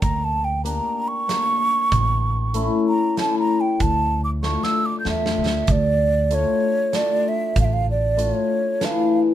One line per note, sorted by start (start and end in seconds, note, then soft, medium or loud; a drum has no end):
0.01 0.78 D2 medium
0.01 0.26 A#5 medium
0.01 kick medium
0.01 closed hi-hat soft
0.24 0.46 A5 medium
0.44 0.64 G5 medium
0.64 0.97 A#3 medium
0.64 0.97 D4 medium
0.64 0.97 G4 medium
0.64 1.09 A#5 medium
0.64 closed hi-hat medium
1.08 2.66 C#6 loud
1.28 1.60 A#3 medium
1.28 1.60 D4 medium
1.28 1.61 G4 medium
1.28 snare medium
1.28 closed hi-hat medium
1.92 2.68 A1 medium
1.92 kick medium
1.92 closed hi-hat soft
2.54 2.86 A3 medium
2.54 2.87 C#4 medium
2.54 2.87 E4 medium
2.54 closed hi-hat medium
2.88 3.17 A#5 loud
3.17 3.49 A3 medium
3.17 3.50 C#4 medium
3.17 3.50 E4 medium
3.17 3.39 A5 loud
3.17 snare medium
3.17 closed hi-hat soft
3.39 3.62 A#5 loud
3.61 3.83 G5 medium
3.80 4.56 D2 loud
3.80 4.23 A5 loud
3.80 kick medium
3.80 closed hi-hat soft
4.24 4.30 D6 medium
4.43 4.75 A3 medium
4.43 4.75 D4 medium
4.43 4.75 F4 medium
4.43 4.65 C#6 medium
4.43 snare soft
4.63 4.87 E6 loud
4.63 snare soft
4.86 4.99 D6 medium
5.00 5.07 G6 medium
5.04 5.34 E2 medium
5.04 5.37 A3 medium
5.04 5.37 D4 medium
5.04 5.38 F4 medium
5.04 snare medium
5.09 5.73 E5 medium
5.26 snare medium
5.38 5.66 D2 medium
5.46 snare medium
5.67 6.43 D2 loud
5.67 kick medium
5.67 closed hi-hat medium
5.71 6.36 D5 loud
6.31 6.63 A3 medium
6.31 6.63 D4 medium
6.31 6.63 F4 medium
6.31 6.97 C#5 medium
6.31 closed hi-hat medium
6.93 7.25 A3 medium
6.93 7.25 D4 medium
6.93 7.25 F4 medium
6.93 7.30 D5 loud
6.93 snare medium
6.93 closed hi-hat soft
7.28 7.58 E5 medium
7.56 8.31 A1 medium
7.56 kick medium
7.56 closed hi-hat soft
7.60 7.66 F5 loud
7.65 7.75 E5 medium
7.73 7.89 F5 loud
7.91 8.24 D5 medium
8.17 8.49 A3 medium
8.17 8.50 D4 medium
8.17 8.50 F4 medium
8.17 closed hi-hat medium
8.22 8.86 C#5 medium
8.80 9.34 E3 medium
8.80 9.12 A3 medium
8.80 9.12 D4 medium
8.80 snare medium
8.80 closed hi-hat soft
8.85 9.19 F5 medium